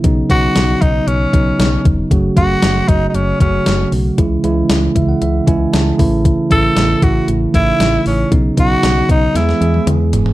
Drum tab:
HH |x-x-x-x-x-x-x-x-|x-x-x-x-x-x-x-o-|x-x-x-x-x-x-x-o-|x-x-x-x-x-x-x-o-|
SD |----o-------o---|----o-------o---|----o-------o---|----o-------o---|
T1 |----------------|----------------|----------------|----------------|
T2 |----------------|----------------|----------------|----------------|
FT |----------------|----------------|----------------|----------------|
BD |o-o---o---o---o-|o-o---o---o-----|o-----o---o---o-|o-o---o---o-----|

HH |x-x-x-x-x-x-x-x-|
SD |----o---oo------|
T1 |-----------o----|
T2 |------------o---|
FT |--------------oo|
BD |o-o---o---------|